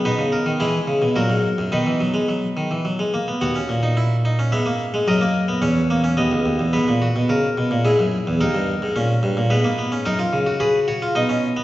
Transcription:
<<
  \new Staff \with { instrumentName = "Harpsichord" } { \time 3/4 \key b \major \tempo 4 = 108 << { b'8 ais'8 gis'4 ais'4 | b'2~ b'8 r8 | fis''2 e''4 | dis''4 cis''4 dis''4 |
\key dis \phrygian b'4 ais'4 gis'4 | ais'2 b'4 | r4 b'8 cis''8 dis''4 | } \\ { dis'4 e'4 fis'4 | dis'2~ dis'8 r8 | fis'2. | ais'2. |
r2. | r2. | ais'4 fis'2 | } >> }
  \new Staff \with { instrumentName = "Harpsichord" } { \clef bass \time 3/4 \key b \major << { b4 gis4 fis4 | dis16 e16 fis16 gis16 fis8 dis16 e16 fis16 gis16 ais16 b16 | b16 cis'8 dis'16 e'8 dis'16 cis'16 b16 ais8 gis16 | fis16 ais8 b16 cis'8 ais16 cis'16 b4 |
\key dis \phrygian b8 fis'4. e'4 | dis'4 cis'4 b16 ais16 b16 cis'16 | dis'16 eis'8 fis'16 gis'8 fis'16 eis'16 dis'16 cis'8 b16 | } \\ { b,16 cis8 dis16 e8 cis16 b,16 ais,16 gis,8 fis,16 | b,2~ b,8 r8 | dis,8 ais,4. gis,4 | fis,4 e,4 dis,16 cis,16 dis,16 e,16 |
gis,16 ais,8 b,16 cis8 b,16 ais,16 gis,16 fis,8 e,16 | dis,16 g,8 gis,16 ais,8 g,16 ais,16 gis,4 | fis,8 cis4. b,4 | } >> }
>>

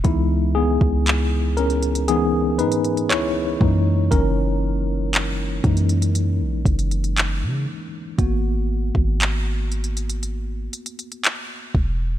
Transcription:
<<
  \new Staff \with { instrumentName = "Tine electric piano" } { \time 4/4 \key gis \minor \tempo 4 = 59 <gis e'>8 <b gis'>4 <cis' ais'>8 gis'8 <dis' b'>8 <e' cis''>4 | <cis' ais'>2.~ <cis' ais'>8 r8 | r1 | }
  \new Staff \with { instrumentName = "Tine electric piano" } { \time 4/4 \key gis \minor <e b dis'>4. r8 <e b dis'>8 r4 <e gis ais dis'>8 | r4. <e gis ais dis'>8 r2 | <ais b fis'>8 r2. r8 | }
  \new Staff \with { instrumentName = "808-style bass" } { \clef bass \time 4/4 \key gis \minor cis,8. cis,4.~ cis,16 gis,8 cis,8 fis,8 | fis,,4. fis,8. ais,,16 fis,,8. cis16 r8 | gis,,8. gis,,4.~ gis,,16 r4 e,,8 | }
  \new DrumStaff \with { instrumentName = "Drums" } \drummode { \time 4/4 <hh bd>8. bd16 <hc hh>8 hh32 hh32 hh32 hh32 hh8 hh32 hh32 hh32 hh32 <hc hh>8 bd8 | <hh bd>4 <hc hh>8 <hh bd>32 hh32 hh32 hh32 hh8 <hh bd>32 hh32 hh32 hh32 <hc hh>4 | <hh bd>8. bd16 <hc hh>8 hh32 hh32 hh32 hh32 hh8 hh32 hh32 hh32 hh32 <hc hh>8 bd8 | }
>>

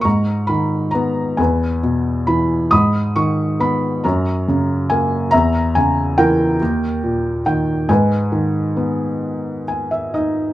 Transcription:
<<
  \new Staff \with { instrumentName = "Felt piano" } { \time 6/8 \key gis \minor \tempo 4. = 46 << { cis'''8 b''8 ais''8 gis''8 r8 b''8 | dis'''8 cis'''8 b''8 ais''8 r8 gis''8 | ais''8 gis''8 g''4. g''8 | gis''2 gis''16 e''16 dis''8 | } \\ { ais''4. b'4. | b''4. cis''4. | e''4 ais'4. r8 | b'2 r4 | } >> }
  \new Staff \with { instrumentName = "Felt piano" } { \clef bass \time 6/8 \key gis \minor gis,8 dis8 b8 e,8 b,8 e8 | gis,8 dis8 b8 fis,8 cis8 ais8 | e,8 cis8 e8 dis,8 ais,8 dis8 | gis,8 dis8 b4. dis'8 | }
>>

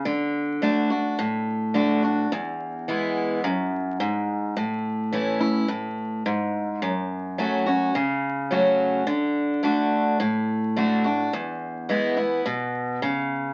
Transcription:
\new Staff \with { instrumentName = "Steel-string acoustic guitar" } { \time 4/4 \key d \lydian \tempo 4 = 106 << { r4 <d a d' fis'>8 <d' fis'>8 r4 <d a d' fis'>8 <d' fis'>8 | r4 <e gis b e'>4 r2 | r4 <e a cis' e'>8 <cis' e'>8 r2 | r4 <fis a cis' fis'>8 <cis' fis'>8 r4 <fis a cis' fis'>4 |
r4 <d a d' fis'>4 r4 <d a d' fis'>8 <d' fis'>8 | r4 <e gis b e'>8 <b e'>8 r2 | } \\ { d2 a,2 | e,2 fis,4 gis,4 | a,2 a,4 gis,4 | fis,2 cis2 |
d2 a,2 | e,2 b,4 cis4 | } >> }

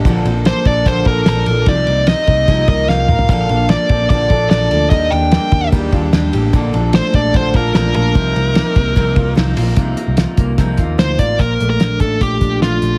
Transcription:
<<
  \new Staff \with { instrumentName = "Lead electric guitar" } { \time 4/4 \key bes \major \tempo 4 = 148 r4 c''8 d''8 c''8 bes'8 bes'4 | d''4 ees''4. ees''8 f''4 | f''4 d''4 d''4 d''4 | ees''8 g''4. r2 |
r4 c''8 d''8 c''8 bes'8 bes'8 bes'8~ | bes'2. r4 | r2. c''8 d''8 | bes'8. bes'8. a'8 g'4 f'4 | }
  \new Staff \with { instrumentName = "Clean electric guitar" } { \time 4/4 \key bes \major bes,8 c'16 d'16 bes8 d'8 f8 a'8 c'16 d'16 a'8 | c8 ees'8 c'8 ees'8 f8 bes'8 ees'8 bes'8 | bes,8 d'8 bes8 c'16 d'16 f8 a'8 d'8 a'8 | ees8 d'8 bes8 d'8 g8 f'16 g'16 d'8 g'8 |
bes,8 d'8 a8 d'8 f8 f'8 c'16 d'16 f'8 | c8 c'8 bes8 c'8 ees8 f'8 c'8 f'8 | <c f'>8 c'8 f'8 bes8 c'8 f'8 c'8 f'8 | bes,8 a8 d'8 a8 f8 d'8 a8 f8 | }
  \new Staff \with { instrumentName = "Steel-string acoustic guitar" } { \time 4/4 \key bes \major <bes, d f bes d' a'>8 <f bes d' a'>8 <f bes d' a'>8 <f bes d' a'>8 <bes, d f bes d' a'>8 <f bes d' a'>8 <f bes d' a'>8 <f bes d' a'>8 | <c f bes ees' bes'>8 <bes ees' bes'>8 <f bes ees' bes'>8 <bes ees' bes'>8 <c f bes ees' bes'>8 <bes ees' bes'>8 <f bes ees' bes'>8 <bes ees' bes'>8 | <bes, d f bes d' a'>8 <f bes d' a'>8 <f bes a'>8 <f bes d' a'>8 <bes, d f bes d' a'>8 <f bes d' a'>8 <f bes d' a'>8 <f bes d' a'>8 | <ees g bes d' g'>8 <bes d' g'>8 <g bes d' g'>8 <bes d' g'>8 <ees g bes d' g'>8 <bes d' g'>8 <g bes d' g'>8 <bes d' g'>8 |
<bes, d f bes d' a'>8 <f bes d' a'>8 <f bes d' a'>8 <f bes d' a'>8 <bes, d f bes d' a'>8 <f bes d' a'>8 <f bes d' a'>8 <f bes d' a'>8 | <c f bes ees' bes'>8 <bes ees' bes'>8 <f bes ees' bes'>8 <bes ees' bes'>8 <c f bes ees' bes'>8 <bes ees' bes'>8 <f bes ees' bes'>8 <bes ees' bes'>8 | <c f bes ees' bes'>8 <bes ees' bes'>8 <f bes ees' bes'>8 <bes ees' bes'>8 <c f bes ees' bes'>8 <bes ees' bes'>8 <f bes ees' bes'>8 <bes ees' bes'>8 | r1 | }
  \new Staff \with { instrumentName = "Picked electric bass" } { \clef bass \time 4/4 \key bes \major bes,,8 bes,,8. r16 bes,,8 bes,,8 bes,,8 bes,,8 bes,,8 | c,8 c,8. r16 c,8 c,8 c,8 c,8 a,,8 | bes,,8 bes,,8. r16 bes,,8 bes,,8 bes,,8 bes,,8 d,8 | ees,8 ees,8. r16 ees,8 ees,8 ees,8 ees,8 a,,8 |
bes,,8 bes,,8. r16 bes,,8 bes,,8 bes,,8 bes,,8 bes,,8 | c,8 c,8. r16 c,8 c,8 c,8 c,8 bes,,8 | c,8 r16 c,8 r16 c,8 c,8 ees,8 d,8 a,,8 | bes,,8 bes,,8 bes,,8 a,,8 bes,,8 bes,,8 bes,,8 bes,,8 | }
  \new DrumStaff \with { instrumentName = "Drums" } \drummode { \time 4/4 <bd cymr>8 cymr8 <cymr sn>8 <bd cymr>8 <bd cymr>8 <bd cymr>8 <cymr sn>8 cymr8 | <bd cymr>8 cymr8 <cymr sn>8 <bd cymr>8 <bd cymr>8 <bd cymr>8 sn8 toml16 tomfh16 | <hhp bd cymr>8 cymr8 <cymr sn>8 <bd cymr>8 <bd cymr>8 <bd cymr>8 <cymr sn>8 cymr8 | <bd cymr>8 cymr8 <cymr sn>8 <bd cymr>8 <bd cymr>8 <bd cymr>8 <cymr sn>8 cymr8 |
<bd cymr>8 cymr8 <cymr sn>8 <bd cymr>8 <bd cymr>8 <bd cymr>8 <cymr sn>8 cymr8 | <bd cymr>8 cymr8 <cymr sn>8 <bd cymr>8 <bd cymr>8 <bd cymr>8 <cymr sn>8 <hho cymr>8 | <hh bd>8 hh8 <hh sn>8 <hh bd>8 <hh bd>8 <hh bd>8 <hh sn>8 <hh bd>8 | <hh bd>8 hh8 <hh sn>8 <hh bd>8 <hh bd>8 <hh bd>8 <hh sn>8 hh8 | }
>>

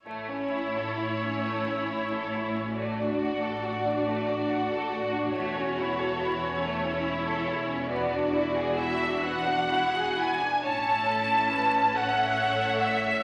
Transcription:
<<
  \new Staff \with { instrumentName = "Violin section" } { \time 6/8 \key a \major \tempo 4. = 46 cis''2. | d''2. | cis''2. | d''4 e''8 fis''4 gis''8 |
a''4. fis''4 e''8 | }
  \new Staff \with { instrumentName = "Viola section" } { \time 6/8 \key a \major << { r2. | r2. | r2. | r2. |
e'4. a'4. | } \\ { e'2. | fis'2.~ | fis'4. e'4. | fis'2. |
cis'2. | } >> }
  \new Staff \with { instrumentName = "Violin section" } { \time 6/8 \key a \major << { a16 cis'16 e'16 a'16 e'16 cis'16 a16 cis'16 e'16 a'16 e'16 cis'16 | a16 d'16 fis'16 a'16 fis'16 d'16 a16 d'16 fis'16 a'16 fis'16 d'16 | a16 cis'16 e'16 a'16 e'16 cis'16 a16 cis'16 e'16 a'16 e'16 cis'16 | b16 d'16 e'16 gis'16 e'16 d'16 b16 d'16 e'16 gis'16 e'16 d'16 |
cis''4. e''4. | } \\ { r2. | r2. | r2. | r2. |
cis''8 a'8 b'8 cis''4. | } >> }
  \new Staff \with { instrumentName = "Cello section" } { \clef bass \time 6/8 \key a \major a,2.~ | a,2. | e,2.~ | e,2. |
a,2. | }
  \new Staff \with { instrumentName = "Double bass section" } { \clef bass \time 6/8 \key a \major a,,2.~ | a,,2. | e,,2.~ | e,,2. |
a,,2. | }
>>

